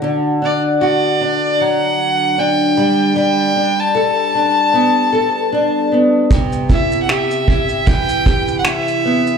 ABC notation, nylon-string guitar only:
X:1
M:4/4
L:1/8
Q:"Swing 16ths" 1/4=76
K:G
V:1 name="Nylon-string guitar"
D, D F D F,2 D G, | G, D A D B, A D B, | C, E G E E, G E B, |]